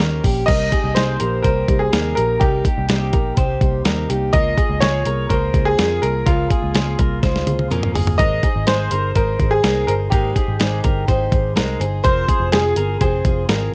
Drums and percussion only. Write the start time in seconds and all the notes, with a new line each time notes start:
0.00 snare, closed hi-hat
0.24 kick, open hi-hat
0.48 kick, closed hi-hat, crash
0.72 kick, closed hi-hat
0.96 snare, closed hi-hat
1.20 closed hi-hat
1.44 kick, closed hi-hat
1.68 kick, closed hi-hat
1.93 snare, closed hi-hat
2.17 closed hi-hat
2.41 kick, closed hi-hat
2.65 kick, closed hi-hat
2.89 snare, closed hi-hat
3.13 kick, closed hi-hat
3.37 kick, closed hi-hat
3.61 kick, closed hi-hat
3.85 snare, closed hi-hat
4.10 closed hi-hat
4.33 kick, closed hi-hat
4.58 kick, closed hi-hat
4.81 snare, closed hi-hat
5.05 closed hi-hat
5.30 kick, closed hi-hat
5.54 kick, closed hi-hat
5.79 snare, closed hi-hat
6.03 closed hi-hat
6.26 kick, closed hi-hat
6.50 kick, closed hi-hat
6.75 snare, closed hi-hat
6.99 kick, closed hi-hat
7.23 kick, snare, closed hi-hat
7.36 snare
7.47 closed hi-hat, high tom
7.59 high tom
7.72 closed hi-hat, mid tom
7.83 mid tom
7.96 floor tom, open hi-hat
8.07 floor tom
8.19 kick, closed hi-hat
8.43 kick, closed hi-hat
8.67 snare, closed hi-hat
8.91 closed hi-hat
9.15 kick, closed hi-hat
9.39 kick, closed hi-hat
9.64 snare, closed hi-hat
9.88 closed hi-hat
10.12 kick, closed hi-hat
10.36 kick, closed hi-hat
10.60 snare, closed hi-hat
10.84 kick, closed hi-hat
11.08 kick, closed hi-hat
11.32 kick, closed hi-hat
11.57 snare, closed hi-hat
11.81 closed hi-hat
12.04 kick, closed hi-hat
12.29 kick, closed hi-hat
12.52 snare, closed hi-hat
12.76 closed hi-hat
13.01 kick, closed hi-hat
13.25 kick, closed hi-hat
13.49 snare, closed hi-hat